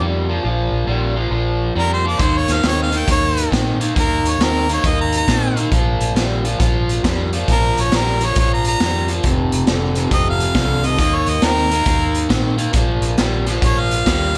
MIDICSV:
0, 0, Header, 1, 5, 480
1, 0, Start_track
1, 0, Tempo, 439560
1, 487, Time_signature, 4, 2, 24, 8
1, 15700, End_track
2, 0, Start_track
2, 0, Title_t, "Harmonica"
2, 0, Program_c, 0, 22
2, 1951, Note_on_c, 0, 70, 96
2, 2094, Note_off_c, 0, 70, 0
2, 2109, Note_on_c, 0, 72, 79
2, 2253, Note_off_c, 0, 72, 0
2, 2265, Note_on_c, 0, 74, 73
2, 2412, Note_on_c, 0, 72, 77
2, 2428, Note_off_c, 0, 74, 0
2, 2590, Note_on_c, 0, 73, 78
2, 2607, Note_off_c, 0, 72, 0
2, 2753, Note_on_c, 0, 77, 71
2, 2769, Note_off_c, 0, 73, 0
2, 2895, Note_off_c, 0, 77, 0
2, 2921, Note_on_c, 0, 73, 80
2, 3060, Note_off_c, 0, 73, 0
2, 3086, Note_on_c, 0, 77, 81
2, 3245, Note_on_c, 0, 79, 77
2, 3261, Note_off_c, 0, 77, 0
2, 3382, Note_off_c, 0, 79, 0
2, 3399, Note_on_c, 0, 73, 94
2, 3850, Note_off_c, 0, 73, 0
2, 4358, Note_on_c, 0, 70, 94
2, 4684, Note_on_c, 0, 73, 76
2, 4700, Note_off_c, 0, 70, 0
2, 4842, Note_on_c, 0, 70, 89
2, 4858, Note_off_c, 0, 73, 0
2, 5137, Note_off_c, 0, 70, 0
2, 5170, Note_on_c, 0, 73, 77
2, 5315, Note_on_c, 0, 75, 87
2, 5332, Note_off_c, 0, 73, 0
2, 5458, Note_off_c, 0, 75, 0
2, 5470, Note_on_c, 0, 82, 78
2, 5616, Note_off_c, 0, 82, 0
2, 5644, Note_on_c, 0, 82, 86
2, 6094, Note_off_c, 0, 82, 0
2, 8210, Note_on_c, 0, 70, 96
2, 8527, Note_on_c, 0, 73, 83
2, 8543, Note_off_c, 0, 70, 0
2, 8689, Note_on_c, 0, 70, 94
2, 8706, Note_off_c, 0, 73, 0
2, 9014, Note_on_c, 0, 73, 83
2, 9030, Note_off_c, 0, 70, 0
2, 9149, Note_off_c, 0, 73, 0
2, 9165, Note_on_c, 0, 73, 84
2, 9305, Note_off_c, 0, 73, 0
2, 9321, Note_on_c, 0, 82, 76
2, 9462, Note_off_c, 0, 82, 0
2, 9474, Note_on_c, 0, 82, 103
2, 9929, Note_off_c, 0, 82, 0
2, 11071, Note_on_c, 0, 75, 92
2, 11217, Note_off_c, 0, 75, 0
2, 11246, Note_on_c, 0, 77, 80
2, 11856, Note_on_c, 0, 75, 87
2, 11872, Note_off_c, 0, 77, 0
2, 12008, Note_off_c, 0, 75, 0
2, 12020, Note_on_c, 0, 75, 90
2, 12175, Note_on_c, 0, 73, 81
2, 12191, Note_off_c, 0, 75, 0
2, 12341, Note_on_c, 0, 75, 86
2, 12358, Note_off_c, 0, 73, 0
2, 12486, Note_on_c, 0, 70, 106
2, 12503, Note_off_c, 0, 75, 0
2, 13417, Note_off_c, 0, 70, 0
2, 14914, Note_on_c, 0, 73, 83
2, 15076, Note_on_c, 0, 77, 88
2, 15092, Note_off_c, 0, 73, 0
2, 15700, Note_off_c, 0, 77, 0
2, 15700, End_track
3, 0, Start_track
3, 0, Title_t, "Overdriven electric guitar"
3, 0, Program_c, 1, 29
3, 5, Note_on_c, 1, 46, 70
3, 9, Note_on_c, 1, 55, 85
3, 285, Note_off_c, 1, 46, 0
3, 288, Note_off_c, 1, 55, 0
3, 314, Note_on_c, 1, 46, 80
3, 320, Note_on_c, 1, 53, 77
3, 461, Note_off_c, 1, 46, 0
3, 471, Note_off_c, 1, 53, 0
3, 474, Note_on_c, 1, 46, 78
3, 483, Note_on_c, 1, 53, 93
3, 926, Note_off_c, 1, 46, 0
3, 931, Note_off_c, 1, 53, 0
3, 951, Note_on_c, 1, 46, 84
3, 955, Note_on_c, 1, 55, 81
3, 1239, Note_off_c, 1, 46, 0
3, 1240, Note_off_c, 1, 55, 0
3, 1264, Note_on_c, 1, 46, 70
3, 1267, Note_on_c, 1, 53, 79
3, 1413, Note_off_c, 1, 46, 0
3, 1419, Note_off_c, 1, 53, 0
3, 1426, Note_on_c, 1, 46, 74
3, 1432, Note_on_c, 1, 53, 87
3, 1882, Note_off_c, 1, 46, 0
3, 1885, Note_off_c, 1, 53, 0
3, 1916, Note_on_c, 1, 46, 72
3, 1920, Note_on_c, 1, 55, 78
3, 2201, Note_off_c, 1, 46, 0
3, 2203, Note_off_c, 1, 55, 0
3, 2231, Note_on_c, 1, 46, 74
3, 2238, Note_on_c, 1, 53, 77
3, 2386, Note_off_c, 1, 46, 0
3, 2390, Note_off_c, 1, 53, 0
3, 2394, Note_on_c, 1, 51, 77
3, 2400, Note_on_c, 1, 58, 87
3, 2847, Note_off_c, 1, 51, 0
3, 2850, Note_off_c, 1, 58, 0
3, 2872, Note_on_c, 1, 51, 85
3, 2876, Note_on_c, 1, 60, 88
3, 3159, Note_off_c, 1, 51, 0
3, 3162, Note_off_c, 1, 60, 0
3, 3177, Note_on_c, 1, 51, 74
3, 3184, Note_on_c, 1, 58, 81
3, 3336, Note_off_c, 1, 51, 0
3, 3343, Note_off_c, 1, 58, 0
3, 3349, Note_on_c, 1, 51, 76
3, 3354, Note_on_c, 1, 58, 82
3, 3805, Note_off_c, 1, 51, 0
3, 3807, Note_off_c, 1, 58, 0
3, 3827, Note_on_c, 1, 51, 75
3, 3832, Note_on_c, 1, 60, 85
3, 4117, Note_off_c, 1, 51, 0
3, 4120, Note_off_c, 1, 60, 0
3, 4148, Note_on_c, 1, 51, 82
3, 4154, Note_on_c, 1, 58, 79
3, 4299, Note_off_c, 1, 51, 0
3, 4309, Note_off_c, 1, 58, 0
3, 4312, Note_on_c, 1, 51, 87
3, 4320, Note_on_c, 1, 58, 94
3, 4767, Note_off_c, 1, 51, 0
3, 4771, Note_off_c, 1, 58, 0
3, 4805, Note_on_c, 1, 51, 79
3, 4810, Note_on_c, 1, 60, 90
3, 5087, Note_off_c, 1, 51, 0
3, 5090, Note_off_c, 1, 60, 0
3, 5119, Note_on_c, 1, 51, 67
3, 5125, Note_on_c, 1, 58, 79
3, 5272, Note_off_c, 1, 51, 0
3, 5275, Note_off_c, 1, 58, 0
3, 5286, Note_on_c, 1, 51, 73
3, 5288, Note_on_c, 1, 58, 91
3, 5735, Note_off_c, 1, 51, 0
3, 5736, Note_off_c, 1, 58, 0
3, 5766, Note_on_c, 1, 51, 75
3, 5775, Note_on_c, 1, 60, 89
3, 6048, Note_off_c, 1, 51, 0
3, 6053, Note_off_c, 1, 60, 0
3, 6071, Note_on_c, 1, 51, 78
3, 6074, Note_on_c, 1, 58, 83
3, 6229, Note_off_c, 1, 51, 0
3, 6230, Note_off_c, 1, 58, 0
3, 6241, Note_on_c, 1, 46, 80
3, 6242, Note_on_c, 1, 53, 91
3, 6692, Note_off_c, 1, 46, 0
3, 6693, Note_off_c, 1, 53, 0
3, 6723, Note_on_c, 1, 46, 75
3, 6731, Note_on_c, 1, 55, 88
3, 7007, Note_off_c, 1, 46, 0
3, 7012, Note_off_c, 1, 55, 0
3, 7033, Note_on_c, 1, 46, 69
3, 7041, Note_on_c, 1, 53, 73
3, 7187, Note_off_c, 1, 46, 0
3, 7194, Note_off_c, 1, 53, 0
3, 7201, Note_on_c, 1, 46, 73
3, 7205, Note_on_c, 1, 53, 99
3, 7653, Note_off_c, 1, 46, 0
3, 7655, Note_off_c, 1, 53, 0
3, 7682, Note_on_c, 1, 46, 82
3, 7691, Note_on_c, 1, 55, 80
3, 7967, Note_off_c, 1, 46, 0
3, 7971, Note_off_c, 1, 55, 0
3, 8006, Note_on_c, 1, 46, 74
3, 8010, Note_on_c, 1, 53, 90
3, 8157, Note_off_c, 1, 46, 0
3, 8159, Note_off_c, 1, 53, 0
3, 8176, Note_on_c, 1, 46, 84
3, 8181, Note_on_c, 1, 53, 90
3, 8621, Note_off_c, 1, 46, 0
3, 8623, Note_off_c, 1, 53, 0
3, 8653, Note_on_c, 1, 46, 76
3, 8660, Note_on_c, 1, 55, 92
3, 8932, Note_off_c, 1, 46, 0
3, 8936, Note_off_c, 1, 55, 0
3, 8971, Note_on_c, 1, 46, 69
3, 8980, Note_on_c, 1, 53, 76
3, 9119, Note_off_c, 1, 46, 0
3, 9124, Note_off_c, 1, 53, 0
3, 9143, Note_on_c, 1, 46, 75
3, 9152, Note_on_c, 1, 53, 90
3, 9584, Note_off_c, 1, 46, 0
3, 9588, Note_off_c, 1, 53, 0
3, 9615, Note_on_c, 1, 46, 82
3, 9621, Note_on_c, 1, 55, 82
3, 9893, Note_off_c, 1, 46, 0
3, 9897, Note_off_c, 1, 55, 0
3, 9923, Note_on_c, 1, 46, 76
3, 9929, Note_on_c, 1, 53, 82
3, 10075, Note_off_c, 1, 46, 0
3, 10078, Note_off_c, 1, 53, 0
3, 10090, Note_on_c, 1, 41, 77
3, 10098, Note_on_c, 1, 48, 84
3, 10537, Note_off_c, 1, 41, 0
3, 10541, Note_off_c, 1, 48, 0
3, 10565, Note_on_c, 1, 41, 86
3, 10573, Note_on_c, 1, 50, 84
3, 10848, Note_off_c, 1, 41, 0
3, 10852, Note_off_c, 1, 50, 0
3, 10875, Note_on_c, 1, 41, 77
3, 10879, Note_on_c, 1, 48, 82
3, 11024, Note_off_c, 1, 41, 0
3, 11030, Note_off_c, 1, 48, 0
3, 11037, Note_on_c, 1, 41, 77
3, 11043, Note_on_c, 1, 48, 89
3, 11490, Note_off_c, 1, 41, 0
3, 11493, Note_off_c, 1, 48, 0
3, 11523, Note_on_c, 1, 41, 72
3, 11527, Note_on_c, 1, 50, 84
3, 11806, Note_off_c, 1, 41, 0
3, 11808, Note_off_c, 1, 50, 0
3, 11823, Note_on_c, 1, 41, 75
3, 11831, Note_on_c, 1, 48, 81
3, 11984, Note_off_c, 1, 41, 0
3, 11985, Note_off_c, 1, 48, 0
3, 11990, Note_on_c, 1, 51, 79
3, 11998, Note_on_c, 1, 58, 94
3, 12445, Note_off_c, 1, 51, 0
3, 12450, Note_off_c, 1, 58, 0
3, 12469, Note_on_c, 1, 51, 79
3, 12479, Note_on_c, 1, 60, 85
3, 12759, Note_off_c, 1, 51, 0
3, 12764, Note_off_c, 1, 60, 0
3, 12784, Note_on_c, 1, 51, 71
3, 12791, Note_on_c, 1, 58, 84
3, 12927, Note_off_c, 1, 51, 0
3, 12931, Note_off_c, 1, 58, 0
3, 12940, Note_on_c, 1, 51, 81
3, 12944, Note_on_c, 1, 58, 92
3, 13400, Note_off_c, 1, 51, 0
3, 13402, Note_off_c, 1, 58, 0
3, 13419, Note_on_c, 1, 51, 80
3, 13424, Note_on_c, 1, 60, 83
3, 13713, Note_off_c, 1, 51, 0
3, 13715, Note_off_c, 1, 60, 0
3, 13730, Note_on_c, 1, 51, 69
3, 13733, Note_on_c, 1, 58, 89
3, 13893, Note_off_c, 1, 51, 0
3, 13897, Note_off_c, 1, 58, 0
3, 13897, Note_on_c, 1, 46, 84
3, 13903, Note_on_c, 1, 53, 85
3, 14357, Note_off_c, 1, 46, 0
3, 14360, Note_off_c, 1, 53, 0
3, 14389, Note_on_c, 1, 46, 71
3, 14395, Note_on_c, 1, 55, 83
3, 14677, Note_off_c, 1, 46, 0
3, 14680, Note_off_c, 1, 55, 0
3, 14702, Note_on_c, 1, 46, 73
3, 14708, Note_on_c, 1, 53, 83
3, 14856, Note_off_c, 1, 46, 0
3, 14860, Note_off_c, 1, 53, 0
3, 14869, Note_on_c, 1, 46, 77
3, 14873, Note_on_c, 1, 53, 89
3, 15322, Note_off_c, 1, 46, 0
3, 15324, Note_off_c, 1, 53, 0
3, 15354, Note_on_c, 1, 46, 71
3, 15361, Note_on_c, 1, 55, 89
3, 15638, Note_off_c, 1, 46, 0
3, 15642, Note_off_c, 1, 55, 0
3, 15661, Note_on_c, 1, 46, 83
3, 15666, Note_on_c, 1, 53, 89
3, 15700, Note_off_c, 1, 46, 0
3, 15700, Note_off_c, 1, 53, 0
3, 15700, End_track
4, 0, Start_track
4, 0, Title_t, "Fingered electric bass"
4, 0, Program_c, 2, 33
4, 0, Note_on_c, 2, 41, 84
4, 419, Note_off_c, 2, 41, 0
4, 484, Note_on_c, 2, 34, 91
4, 755, Note_off_c, 2, 34, 0
4, 782, Note_on_c, 2, 34, 78
4, 935, Note_off_c, 2, 34, 0
4, 952, Note_on_c, 2, 34, 82
4, 1375, Note_off_c, 2, 34, 0
4, 1425, Note_on_c, 2, 34, 86
4, 1851, Note_off_c, 2, 34, 0
4, 1920, Note_on_c, 2, 41, 81
4, 2340, Note_off_c, 2, 41, 0
4, 2400, Note_on_c, 2, 39, 81
4, 2673, Note_off_c, 2, 39, 0
4, 2722, Note_on_c, 2, 39, 78
4, 2867, Note_off_c, 2, 39, 0
4, 2879, Note_on_c, 2, 39, 86
4, 3300, Note_off_c, 2, 39, 0
4, 3362, Note_on_c, 2, 39, 85
4, 3782, Note_off_c, 2, 39, 0
4, 3845, Note_on_c, 2, 46, 85
4, 4264, Note_off_c, 2, 46, 0
4, 4333, Note_on_c, 2, 39, 84
4, 4602, Note_off_c, 2, 39, 0
4, 4628, Note_on_c, 2, 39, 81
4, 4780, Note_off_c, 2, 39, 0
4, 4791, Note_on_c, 2, 39, 88
4, 5216, Note_off_c, 2, 39, 0
4, 5284, Note_on_c, 2, 39, 91
4, 5704, Note_off_c, 2, 39, 0
4, 5766, Note_on_c, 2, 46, 89
4, 6186, Note_off_c, 2, 46, 0
4, 6246, Note_on_c, 2, 34, 91
4, 6519, Note_off_c, 2, 34, 0
4, 6551, Note_on_c, 2, 34, 84
4, 6703, Note_off_c, 2, 34, 0
4, 6715, Note_on_c, 2, 34, 89
4, 7140, Note_off_c, 2, 34, 0
4, 7209, Note_on_c, 2, 34, 85
4, 7628, Note_off_c, 2, 34, 0
4, 7695, Note_on_c, 2, 41, 92
4, 8111, Note_off_c, 2, 41, 0
4, 8170, Note_on_c, 2, 34, 83
4, 8442, Note_off_c, 2, 34, 0
4, 8490, Note_on_c, 2, 34, 82
4, 8634, Note_off_c, 2, 34, 0
4, 8664, Note_on_c, 2, 34, 87
4, 9076, Note_off_c, 2, 34, 0
4, 9134, Note_on_c, 2, 34, 91
4, 9550, Note_off_c, 2, 34, 0
4, 9614, Note_on_c, 2, 41, 85
4, 10030, Note_off_c, 2, 41, 0
4, 10090, Note_on_c, 2, 29, 86
4, 10361, Note_off_c, 2, 29, 0
4, 10411, Note_on_c, 2, 29, 82
4, 10555, Note_off_c, 2, 29, 0
4, 10566, Note_on_c, 2, 29, 87
4, 10986, Note_off_c, 2, 29, 0
4, 11043, Note_on_c, 2, 29, 82
4, 11463, Note_off_c, 2, 29, 0
4, 11522, Note_on_c, 2, 36, 87
4, 11994, Note_off_c, 2, 36, 0
4, 11994, Note_on_c, 2, 39, 92
4, 12271, Note_off_c, 2, 39, 0
4, 12310, Note_on_c, 2, 39, 81
4, 12461, Note_off_c, 2, 39, 0
4, 12477, Note_on_c, 2, 39, 92
4, 12899, Note_off_c, 2, 39, 0
4, 12954, Note_on_c, 2, 39, 89
4, 13377, Note_off_c, 2, 39, 0
4, 13433, Note_on_c, 2, 46, 87
4, 13856, Note_off_c, 2, 46, 0
4, 13914, Note_on_c, 2, 34, 88
4, 14189, Note_off_c, 2, 34, 0
4, 14213, Note_on_c, 2, 34, 82
4, 14370, Note_off_c, 2, 34, 0
4, 14403, Note_on_c, 2, 34, 91
4, 14820, Note_off_c, 2, 34, 0
4, 14880, Note_on_c, 2, 34, 91
4, 15298, Note_off_c, 2, 34, 0
4, 15354, Note_on_c, 2, 39, 91
4, 15700, Note_off_c, 2, 39, 0
4, 15700, End_track
5, 0, Start_track
5, 0, Title_t, "Drums"
5, 2396, Note_on_c, 9, 42, 71
5, 2397, Note_on_c, 9, 36, 97
5, 2400, Note_on_c, 9, 38, 31
5, 2505, Note_off_c, 9, 42, 0
5, 2506, Note_off_c, 9, 36, 0
5, 2509, Note_off_c, 9, 38, 0
5, 2708, Note_on_c, 9, 42, 58
5, 2712, Note_on_c, 9, 38, 31
5, 2817, Note_off_c, 9, 42, 0
5, 2822, Note_off_c, 9, 38, 0
5, 2875, Note_on_c, 9, 42, 74
5, 2880, Note_on_c, 9, 38, 100
5, 2984, Note_off_c, 9, 42, 0
5, 2989, Note_off_c, 9, 38, 0
5, 3192, Note_on_c, 9, 42, 60
5, 3301, Note_off_c, 9, 42, 0
5, 3360, Note_on_c, 9, 36, 103
5, 3361, Note_on_c, 9, 42, 79
5, 3470, Note_off_c, 9, 36, 0
5, 3470, Note_off_c, 9, 42, 0
5, 3681, Note_on_c, 9, 42, 56
5, 3790, Note_off_c, 9, 42, 0
5, 3847, Note_on_c, 9, 36, 76
5, 3857, Note_on_c, 9, 42, 85
5, 3861, Note_on_c, 9, 38, 108
5, 3956, Note_off_c, 9, 36, 0
5, 3966, Note_off_c, 9, 42, 0
5, 3970, Note_off_c, 9, 38, 0
5, 4159, Note_on_c, 9, 42, 67
5, 4268, Note_off_c, 9, 42, 0
5, 4327, Note_on_c, 9, 36, 101
5, 4330, Note_on_c, 9, 42, 80
5, 4436, Note_off_c, 9, 36, 0
5, 4439, Note_off_c, 9, 42, 0
5, 4645, Note_on_c, 9, 42, 64
5, 4754, Note_off_c, 9, 42, 0
5, 4812, Note_on_c, 9, 42, 79
5, 4816, Note_on_c, 9, 38, 102
5, 4921, Note_off_c, 9, 42, 0
5, 4925, Note_off_c, 9, 38, 0
5, 5123, Note_on_c, 9, 42, 63
5, 5233, Note_off_c, 9, 42, 0
5, 5284, Note_on_c, 9, 42, 80
5, 5285, Note_on_c, 9, 36, 111
5, 5393, Note_off_c, 9, 42, 0
5, 5394, Note_off_c, 9, 36, 0
5, 5596, Note_on_c, 9, 42, 60
5, 5705, Note_off_c, 9, 42, 0
5, 5765, Note_on_c, 9, 36, 80
5, 5767, Note_on_c, 9, 42, 79
5, 5772, Note_on_c, 9, 38, 110
5, 5874, Note_off_c, 9, 36, 0
5, 5876, Note_off_c, 9, 42, 0
5, 5881, Note_off_c, 9, 38, 0
5, 6080, Note_on_c, 9, 42, 60
5, 6190, Note_off_c, 9, 42, 0
5, 6243, Note_on_c, 9, 36, 105
5, 6245, Note_on_c, 9, 42, 73
5, 6353, Note_off_c, 9, 36, 0
5, 6354, Note_off_c, 9, 42, 0
5, 6557, Note_on_c, 9, 42, 56
5, 6666, Note_off_c, 9, 42, 0
5, 6729, Note_on_c, 9, 42, 73
5, 6734, Note_on_c, 9, 38, 94
5, 6838, Note_off_c, 9, 42, 0
5, 6843, Note_off_c, 9, 38, 0
5, 7041, Note_on_c, 9, 42, 60
5, 7150, Note_off_c, 9, 42, 0
5, 7206, Note_on_c, 9, 36, 108
5, 7207, Note_on_c, 9, 42, 79
5, 7212, Note_on_c, 9, 38, 32
5, 7315, Note_off_c, 9, 36, 0
5, 7316, Note_off_c, 9, 42, 0
5, 7321, Note_off_c, 9, 38, 0
5, 7526, Note_on_c, 9, 42, 59
5, 7636, Note_off_c, 9, 42, 0
5, 7691, Note_on_c, 9, 36, 78
5, 7692, Note_on_c, 9, 42, 80
5, 7696, Note_on_c, 9, 38, 106
5, 7800, Note_off_c, 9, 36, 0
5, 7801, Note_off_c, 9, 42, 0
5, 7805, Note_off_c, 9, 38, 0
5, 8002, Note_on_c, 9, 42, 64
5, 8111, Note_off_c, 9, 42, 0
5, 8169, Note_on_c, 9, 42, 79
5, 8170, Note_on_c, 9, 36, 107
5, 8173, Note_on_c, 9, 38, 31
5, 8278, Note_off_c, 9, 42, 0
5, 8280, Note_off_c, 9, 36, 0
5, 8283, Note_off_c, 9, 38, 0
5, 8489, Note_on_c, 9, 42, 62
5, 8598, Note_off_c, 9, 42, 0
5, 8647, Note_on_c, 9, 42, 84
5, 8651, Note_on_c, 9, 38, 100
5, 8756, Note_off_c, 9, 42, 0
5, 8760, Note_off_c, 9, 38, 0
5, 8961, Note_on_c, 9, 42, 62
5, 9071, Note_off_c, 9, 42, 0
5, 9122, Note_on_c, 9, 42, 88
5, 9132, Note_on_c, 9, 36, 112
5, 9232, Note_off_c, 9, 42, 0
5, 9241, Note_off_c, 9, 36, 0
5, 9442, Note_on_c, 9, 42, 59
5, 9551, Note_off_c, 9, 42, 0
5, 9611, Note_on_c, 9, 42, 81
5, 9615, Note_on_c, 9, 38, 110
5, 9720, Note_off_c, 9, 42, 0
5, 9724, Note_off_c, 9, 38, 0
5, 9917, Note_on_c, 9, 42, 60
5, 10026, Note_off_c, 9, 42, 0
5, 10084, Note_on_c, 9, 42, 81
5, 10090, Note_on_c, 9, 36, 104
5, 10193, Note_off_c, 9, 42, 0
5, 10199, Note_off_c, 9, 36, 0
5, 10399, Note_on_c, 9, 42, 59
5, 10508, Note_off_c, 9, 42, 0
5, 10560, Note_on_c, 9, 42, 73
5, 10564, Note_on_c, 9, 38, 102
5, 10669, Note_off_c, 9, 42, 0
5, 10674, Note_off_c, 9, 38, 0
5, 10869, Note_on_c, 9, 42, 58
5, 10978, Note_off_c, 9, 42, 0
5, 11042, Note_on_c, 9, 42, 78
5, 11043, Note_on_c, 9, 36, 104
5, 11046, Note_on_c, 9, 38, 30
5, 11151, Note_off_c, 9, 42, 0
5, 11152, Note_off_c, 9, 36, 0
5, 11156, Note_off_c, 9, 38, 0
5, 11360, Note_on_c, 9, 42, 57
5, 11469, Note_off_c, 9, 42, 0
5, 11518, Note_on_c, 9, 42, 80
5, 11519, Note_on_c, 9, 36, 76
5, 11522, Note_on_c, 9, 38, 109
5, 11627, Note_off_c, 9, 42, 0
5, 11629, Note_off_c, 9, 36, 0
5, 11632, Note_off_c, 9, 38, 0
5, 11832, Note_on_c, 9, 42, 66
5, 11941, Note_off_c, 9, 42, 0
5, 11997, Note_on_c, 9, 36, 101
5, 11999, Note_on_c, 9, 42, 78
5, 12003, Note_on_c, 9, 38, 32
5, 12106, Note_off_c, 9, 36, 0
5, 12108, Note_off_c, 9, 42, 0
5, 12113, Note_off_c, 9, 38, 0
5, 12301, Note_on_c, 9, 42, 59
5, 12410, Note_off_c, 9, 42, 0
5, 12469, Note_on_c, 9, 42, 79
5, 12474, Note_on_c, 9, 38, 99
5, 12579, Note_off_c, 9, 42, 0
5, 12583, Note_off_c, 9, 38, 0
5, 12790, Note_on_c, 9, 42, 61
5, 12899, Note_off_c, 9, 42, 0
5, 12948, Note_on_c, 9, 42, 86
5, 12952, Note_on_c, 9, 36, 105
5, 13057, Note_off_c, 9, 42, 0
5, 13061, Note_off_c, 9, 36, 0
5, 13263, Note_on_c, 9, 42, 61
5, 13372, Note_off_c, 9, 42, 0
5, 13432, Note_on_c, 9, 42, 86
5, 13433, Note_on_c, 9, 36, 74
5, 13436, Note_on_c, 9, 38, 110
5, 13541, Note_off_c, 9, 42, 0
5, 13543, Note_off_c, 9, 36, 0
5, 13545, Note_off_c, 9, 38, 0
5, 13742, Note_on_c, 9, 42, 67
5, 13851, Note_off_c, 9, 42, 0
5, 13902, Note_on_c, 9, 42, 82
5, 13907, Note_on_c, 9, 38, 31
5, 13910, Note_on_c, 9, 36, 112
5, 14011, Note_off_c, 9, 42, 0
5, 14016, Note_off_c, 9, 38, 0
5, 14020, Note_off_c, 9, 36, 0
5, 14217, Note_on_c, 9, 42, 60
5, 14327, Note_off_c, 9, 42, 0
5, 14388, Note_on_c, 9, 42, 76
5, 14393, Note_on_c, 9, 38, 100
5, 14497, Note_off_c, 9, 42, 0
5, 14502, Note_off_c, 9, 38, 0
5, 14704, Note_on_c, 9, 42, 56
5, 14708, Note_on_c, 9, 38, 31
5, 14813, Note_off_c, 9, 42, 0
5, 14818, Note_off_c, 9, 38, 0
5, 14875, Note_on_c, 9, 36, 112
5, 14875, Note_on_c, 9, 42, 81
5, 14984, Note_off_c, 9, 36, 0
5, 14984, Note_off_c, 9, 42, 0
5, 15191, Note_on_c, 9, 42, 57
5, 15300, Note_off_c, 9, 42, 0
5, 15356, Note_on_c, 9, 36, 81
5, 15359, Note_on_c, 9, 42, 82
5, 15363, Note_on_c, 9, 38, 109
5, 15466, Note_off_c, 9, 36, 0
5, 15468, Note_off_c, 9, 42, 0
5, 15472, Note_off_c, 9, 38, 0
5, 15700, End_track
0, 0, End_of_file